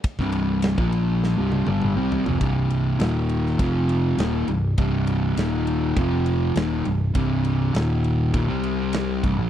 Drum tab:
RD |x-x-x-x---------|x-x-x-x-x-x-x-x-|x-x-x-x-x-x-x-x-|x-x-x-x-x-x-x-x-|
SD |-o--o---o-------|----o--o----o---|----o-------o---|----o-------o---|
T1 |----------oo----|----------------|----------------|----------------|
T2 |------------o---|----------------|----------------|----------------|
FT |--------------oo|----------------|----------------|----------------|
BD |oo---o----------|o-------o-------|o-------o-------|o-------o-----o-|